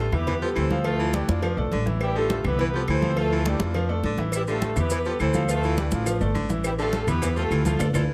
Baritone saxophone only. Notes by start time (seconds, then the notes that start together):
0.28 E3
0.42 F3
0.55 E3
1.00 E3
1.73 D3
2.16 D3
2.61 E3
2.76 F3
2.90 E3
3.33 E3
4.05 D3
4.48 D3
4.92 E3
5.06 F3
5.21 E3
5.65 E3
6.35 D3
6.79 D3
7.22 E3
7.36 F3
7.52 E3
7.95 E3